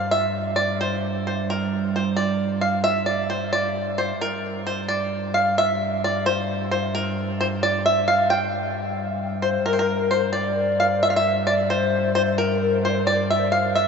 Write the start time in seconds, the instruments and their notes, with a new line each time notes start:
Already playing: viola da gamba G2
0.11 five-string banjo E5
0.56 five-string banjo D5
0.81 five-string banjo C5
1.27 five-string banjo C5
1.50 five-string banjo A#4
1.96 five-string banjo C5
2.17 five-string banjo D5
2.61 five-string banjo F5
2.84 five-string banjo E5
3.06 five-string banjo D5
3.30 five-string banjo C5
3.53 five-string banjo D5
3.98 five-string banjo C5
4.21 viola da gamba G2, five-string banjo A#4
4.67 five-string banjo C5
4.88 five-string banjo D5
5.34 five-string banjo F5
5.58 five-string banjo E5
6.04 five-string banjo D5
6.26 five-string banjo C5
6.71 five-string banjo C5
6.95 five-string banjo A#4
7.41 five-string banjo C5
7.63 five-string banjo D5
7.86 five-string banjo E5
8.08 five-string banjo F5
8.30 five-string banjo G5
9.42 five-string banjo C5, recorder C5
9.66 viola da gamba G2, five-string banjo A#4, recorder A#4
9.73 five-string banjo C5
9.79 five-string banjo A#4, recorder A#4
10.11 five-string banjo C5, recorder C5
10.33 five-string banjo D5, recorder D5
10.80 five-string banjo F5
11.03 recorder E5, five-string banjo E5
11.10 five-string banjo F5
11.16 five-string banjo E5, recorder E5
11.47 five-string banjo D5, recorder D5
11.70 five-string banjo C5, recorder C5
12.14 recorder C5, five-string banjo C5
12.38 five-string banjo A#4, recorder A#4
12.62 recorder A#4
12.83 recorder C5, five-string banjo C5
12.89 recorder D5
12.95 recorder C5
13.05 recorder D5, five-string banjo D5
13.30 five-string banjo E5
13.51 recorder F5, five-string banjo F5
13.74 recorder E5, five-string banjo E5